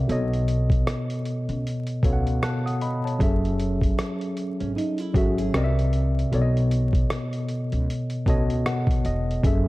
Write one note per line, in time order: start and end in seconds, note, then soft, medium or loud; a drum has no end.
0.00 0.11 C3 medium
0.00 0.10 C4 medium
0.00 0.10 A4 medium
0.00 0.11 A#4 medium
0.00 0.10 D5 medium
0.00 0.11 E5 medium
0.00 0.10 F#5 medium
0.08 0.77 B1 loud
0.08 1.16 B2 medium
0.08 1.17 B3 medium
0.08 1.17 A4 medium
0.08 1.18 C#5 medium
0.08 closed hi-hat medium
0.12 1.18 D#5 medium
0.33 closed hi-hat soft
0.48 closed hi-hat medium
0.70 kick medium
0.70 closed hi-hat medium
0.87 cross-stick loud
0.87 closed hi-hat medium
1.10 closed hi-hat medium
1.25 closed hi-hat medium
1.49 1.63 C#2 medium
1.49 closed hi-hat soft
1.67 closed hi-hat medium
1.87 closed hi-hat medium
2.02 2.37 C#2 medium
2.02 2.83 B2 medium
2.02 2.83 B3 medium
2.02 2.84 A4 medium
2.02 2.43 C#5 medium
2.02 2.13 F5 medium
2.02 kick medium
2.02 closed hi-hat medium
2.13 2.47 F#5 medium
2.27 closed hi-hat soft
2.43 2.65 A5 medium
2.43 2.65 F#6 medium
2.43 cross-stick loud
2.43 closed hi-hat medium
2.66 2.81 F#5 medium
2.66 2.81 D#6 medium
2.66 closed hi-hat medium
2.81 3.04 D#5 medium
2.81 3.03 B5 medium
2.81 closed hi-hat medium
3.05 3.42 C#5 medium
3.05 3.42 A5 medium
3.05 closed hi-hat medium
3.19 3.89 F#1 loud
3.19 4.27 F#3 medium
3.19 4.28 C#4 medium
3.19 4.28 G#4 medium
3.19 4.29 A4 medium
3.19 4.29 E5 medium
3.19 kick loud
3.19 closed hi-hat medium
3.45 closed hi-hat soft
3.60 closed hi-hat medium
3.81 kick medium
3.81 closed hi-hat medium
3.99 cross-stick loud
3.99 closed hi-hat medium
4.21 closed hi-hat medium
4.37 closed hi-hat medium
4.60 4.74 G#1 medium
4.60 4.75 C#4 medium
4.60 closed hi-hat soft
4.76 4.99 D#4 medium
4.76 closed hi-hat medium
4.98 5.14 E4 medium
4.98 closed hi-hat medium
5.14 5.49 G#1 medium
5.14 5.53 F#3 medium
5.14 5.54 C#4 medium
5.14 5.38 F#4 medium
5.14 5.54 G#4 medium
5.14 5.55 A4 medium
5.14 5.55 E5 medium
5.14 kick loud
5.14 closed hi-hat medium
5.38 5.75 G#4 medium
5.38 closed hi-hat medium
5.53 6.23 C2 loud
5.53 6.19 C3 medium
5.53 6.19 C4 medium
5.53 6.20 A#4 medium
5.53 6.20 D5 medium
5.53 5.63 D#5 medium
5.53 cross-stick loud
5.53 closed hi-hat medium
5.64 6.24 E5 loud
5.79 closed hi-hat medium
5.93 closed hi-hat medium
6.19 closed hi-hat medium
6.31 7.01 B1 loud
6.31 7.40 B2 medium
6.31 7.40 B3 medium
6.31 7.40 A4 medium
6.31 7.41 C#5 medium
6.31 6.41 D5 medium
6.31 closed hi-hat medium
6.41 7.45 D#5 medium
6.57 closed hi-hat soft
6.71 closed hi-hat medium
6.93 kick medium
6.93 closed hi-hat medium
7.10 cross-stick loud
7.10 closed hi-hat medium
7.33 closed hi-hat medium
7.48 closed hi-hat medium
7.72 7.86 C#2 medium
7.72 closed hi-hat soft
7.90 closed hi-hat medium
8.10 closed hi-hat medium
8.26 8.61 C#2 medium
8.26 9.06 B2 medium
8.26 9.06 B3 medium
8.26 9.07 A4 medium
8.26 9.07 C#5 medium
8.26 9.05 D#5 medium
8.26 8.64 A5 medium
8.26 kick loud
8.26 closed hi-hat medium
8.50 closed hi-hat medium
8.66 9.02 F#5 medium
8.66 cross-stick loud
8.66 closed hi-hat medium
8.87 9.02 E2 medium
8.87 kick medium
8.87 closed hi-hat soft
9.05 9.39 E1 medium
9.05 9.42 D#5 medium
9.05 closed hi-hat medium
9.31 closed hi-hat medium
9.43 9.68 F#1 loud
9.43 9.68 F#3 medium
9.43 9.68 C#4 medium
9.43 9.68 G#4 medium
9.43 9.68 A4 medium
9.43 9.68 E5 medium
9.43 kick loud
9.43 closed hi-hat medium